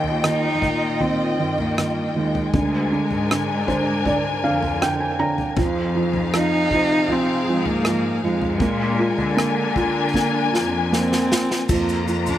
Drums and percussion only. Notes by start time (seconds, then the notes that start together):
0.04 floor tom
0.24 cross-stick
0.62 kick, floor tom
1.00 floor tom
1.58 floor tom
1.78 cross-stick
2.35 floor tom
2.54 kick, floor tom
3.11 floor tom
3.31 cross-stick
3.68 kick, floor tom
4.05 kick, floor tom
4.63 floor tom
4.82 cross-stick
5.38 floor tom
5.57 kick, floor tom
6.13 floor tom
6.34 cross-stick
6.71 kick, floor tom
7.08 floor tom
7.65 floor tom
7.85 cross-stick
8.41 floor tom
8.60 kick, floor tom
9.18 floor tom
9.39 cross-stick
9.76 kick, floor tom
10.14 kick, snare
10.54 snare
10.93 snare
11.12 snare
11.32 snare
11.51 snare
11.69 kick, floor tom, crash, shaker
11.89 shaker
12.08 shaker
12.26 floor tom, shaker